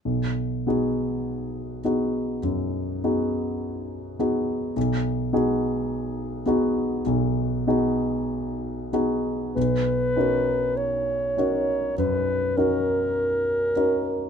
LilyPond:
<<
  \new Staff \with { instrumentName = "Clarinet" } { \time 4/4 \key b \major \tempo 4 = 50 r1 | r1 | b'4 cis''4 b'8 ais'4. | }
  \new Staff \with { instrumentName = "Grand piano" } { \time 4/4 \key b \major b,,8 <b dis' fis' gis'>4 <b dis' fis' gis'>8 fis,8 <b dis' fis' gis'>4 <b dis' fis' gis'>8 | b,,8 <b dis' fis' gis'>4 <b dis' fis' gis'>8 b,,8 <b dis' fis' gis'>4 <b dis' fis' gis'>8 | b,,8 <cis' dis' fis' ais'>4 <cis' dis' fis' ais'>8 fis,8 <cis' dis' fis' ais'>4 <cis' dis' fis' ais'>8 | }
>>